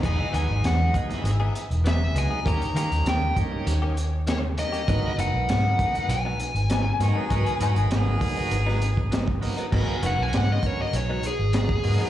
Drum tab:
CC |x---------------|----------------|----------------|----------------|
HH |x-x-x-xxx-xxx-x-|xxxxx-x-x-x-x-xx|x-x-x-xxx-xxx-x-|xxxxx-o-x-x-x-ox|
SD |----o--o----o---|----o-------o---|----o-------o-o-|----o----o--o---|
BD |o-----o---------|o-----o---------|o-----o---------|o-----o----o-o--|

CC |x---------------|
HH |--x-x-x-x-x-x-o-|
SD |----o-------o---|
BD |o-----o------o--|